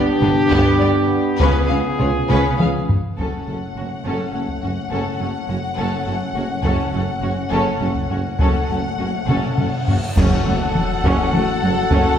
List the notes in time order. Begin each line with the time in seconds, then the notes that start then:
Already playing: B3 D4 G4
0.21 G1 G2 B3 D4 B4, taiko low-mid
0.50 G1 G2 B3 G4, taiko
0.80 G1 G2 B3 G4 D5
1.39 C#2 C#3 B3 C#4 F4 G#4 B4, taiko
1.68 C#2 C#3 B3 G#4 F5
1.99 C#2 C#3 B3 F4 C#5, taiko low-mid
2.29 C#2 C#3 B3 C#4 B4, taiko low-mid
2.58 C#2 C#3 B3 G#4 F5, taiko mid
2.89 taiko low
3.18 F#1 F#2 A3 C#4 A4 F#5, taiko
3.47 F#1 F#2 C#4 A4
3.76 F#1 F#2 C#4 F#4
4.05 F#1 F#2 C#4 A4
4.34 F#1 F#2 C#4 A4
4.48 taiko
4.63 F#1 F#2 C#4 F#4
4.91 F#1 F#2 C#4 A4
5.20 F#1 F#2 C#4 A4
5.48 F#1 F#2 C#4 F#4
5.77 F#1 F#2 C#4 A4
6.06 F#1 F#2 C#4 A4
6.35 F#1 F#2 C#4 F#4
6.63 F#1 F#2 C#4 A4, taiko
6.93 F#1 F#2 C#4 A4
7.22 F#1 F#2 C#4 F#4
7.50 F#1 F#2 C#4 A4
7.80 F#1 F#2 C#4 A4
7.95 taiko
8.09 F#1 F#2 C#4 F#4
8.38 F#1 F#2 A3 C#4 A4 F#5, taiko, reverse cymbal
8.69 F#1 F#2 C#4 A4
8.99 F#1 F#2 C#4 F#4
9.28 F#1 F#2 C#4 A4, taiko low-mid
9.58 F#1 F#2 C#4 A4, taiko low-mid
9.88 F#1 F#2 C#4 F#4, taiko low
10.17 F#1 F#2 C#4 F#4 A4 F#5, concert bass drum, taiko, crash, impact
10.46 F#1 F#2 A3
10.75 taiko mid
11.04 F#1 F#2 C#4, taiko
11.33 F#1 F#2 A3, taiko mid
11.62 F#1 F#2 F#3
11.91 F#1 F#2 C#4, taiko